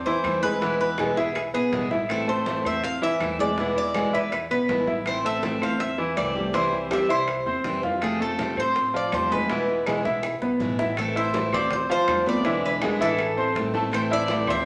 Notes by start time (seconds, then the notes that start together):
Already playing: E2
0.06 E3 E4 C5, high conga
0.24 E2 E3 A3 C4 E4, high bongo, low bongo, high conga, claves
0.42 G#3 A3 C4 E4 G#4 B4, high conga
0.61 B2 E3 G#3 B3 E4, high bongo, high conga
0.80 G#3 B3 E4 B4, high conga
0.98 B2 E3 G#3 B3 E4 G#4, high bongo, high conga, claves
1.17 B1 G#3 B3 E4 G#4 E5, high bongo, high conga
1.35 G#4, muted steel-string acoustic guitar stroke, high bongo, high conga, claves
1.54 B1 B3 G#4 B4, high bongo, high conga
1.72 A1 B2 E3 G#3 B3 E4, high bongo, low bongo, high conga
1.91 G#3 B3 E4 E5, high bongo, high conga
2.09 E3 A3 C4 E4 A4, high bongo, high conga, claves
2.28 A3 C4 E4 A4 C5, high conga
2.46 E3 A3 C4 E4, high bongo, high conga
2.64 E2 A3 C4 E4 C5 E5, high conga, claves
2.84 F5, muted steel-string acoustic guitar stroke, high bongo, high conga
3.02 E3 E4 E5, high conga
3.20 E2 E3 A3 C4 E4, high bongo, low bongo, high conga, claves
3.39 G#3 A3 C4 E4 G#4 D5, high conga
3.58 B2 E3 G#3 B3 E4, high bongo, high conga
3.76 G#3 B3 E4 D5, high conga
3.94 B2 E3 G#3 B3 E4 G#4, high bongo, high conga, claves
4.12 E2 G#3 B3 E4 B4 E5, high bongo, high conga
4.32 B4, muted steel-string acoustic guitar stroke, high bongo, high conga, claves
4.50 B1 B3 B4, high bongo, high conga
4.68 A1 B2 E3 G#3 B3 E4, high bongo, low bongo, high conga
4.87 G#3 B3 E4 E5, high bongo, high conga
5.06 E3 A3 C4 E4 C5, high bongo, high conga, claves
5.24 A3 C4 E4 A4 E5, high conga
5.42 E3 A3 C4 E4, high bongo, high conga
5.61 E2 A3 C4 E4 C5 F5, high conga, claves
5.80 E5, muted steel-string acoustic guitar stroke, high bongo, high conga
5.98 E3 E4, high conga
6.16 C2 E3 A3 C4 E4 D5, high bongo, low bongo, high conga, claves
6.35 G3 A3 C4 E4 G4, high conga
6.53 C3 E3 G3 C4 E4 C5, high bongo
6.72 G3 C4 E4, high conga
6.90 C3 E3 G3 C4 E4 G4 E5, high bongo, high conga, claves
7.08 C2 G3 C4 E4 C5 E5, high bongo, high conga
7.27 muted steel-string acoustic guitar stroke, high bongo, high conga, claves
7.46 E2 C4 C5, high bongo, high conga
7.64 F2 C3 E3 G3 C4 E4, high bongo, low bongo, high conga
7.83 G3 C4 E4 F4 F5, high bongo, high conga
8.01 C3 F3 A3 C4 F4 G#4, high bongo, claves
8.20 A3 C4 F4 A4, high conga
8.38 C3 F3 A3 C4 F4, high bongo, high conga
8.57 A2 A3 C4 F4 C5, high conga, claves
8.76 muted steel-string acoustic guitar stroke, high bongo, high conga
8.94 F3 F4 D5, high conga
9.12 E2 C3 F3 A3 C4 F4 C5, high bongo, low bongo, high conga, claves
9.30 G#3 A3 C4 F4 G#4 B4, high conga
9.49 B2 E3 G#3 B3 E4, high bongo, high conga
9.68 G#3 B3 E4, high conga
9.86 B2 E3 G#3 B3 E4 G#4, high bongo, high conga, claves
10.04 B1 G#3 B3 E4 E5, high bongo, high conga
10.23 muted steel-string acoustic guitar stroke, high bongo, high conga, claves
10.41 B1 B3 B4, low bongo, high conga
10.59 A1 B2 E3 G#3 B3 E4, low bongo, high conga
10.79 G#3 B3 E4 E5, low bongo, high conga
10.97 E3 A3 C4 E4 A4, high bongo, high conga, claves
11.16 E4 C5 E5 E6, high conga
11.33 E3 A3 C4 E4, high bongo, high conga
11.52 D2 C4 C5 D5 C6, high conga, low conga, claves
11.71 C5, muted steel-string acoustic guitar stroke, high bongo, high conga, low conga
11.89 F3 F4 C5 F5, high conga
12.07 E2 D3 A3 C4 F4, high bongo, low bongo, high conga, claves
12.26 A3 B3 C4 F4 B4 D5 B5, high conga
12.44 B2 D3 E3 G#3 B3 E4 E5, high bongo, high conga
12.63 B4, high conga
12.81 B2 D3 G#3 B3 E4 G#4 G#5, high bongo, high conga, claves
13.00 A1 E3 E4 A4 E5, high bongo, high conga
13.18 muted steel-string acoustic guitar stroke, high bongo, claves
13.37 C4 C5 C6, high bongo, high conga
13.55 A1 E3 A3 C4 E4, high bongo, low bongo, high conga
13.74 A3 C4 E4 A4 A5, high bongo, high conga
13.91 E3 A3 C4 E4 C5, high bongo, claves
14.10 E4 D5 E5 E6, high conga
14.28 E3 A3 C4 E4, high bongo, high conga
14.47 D2 C4 C5 E5 C6, high conga, low conga, claves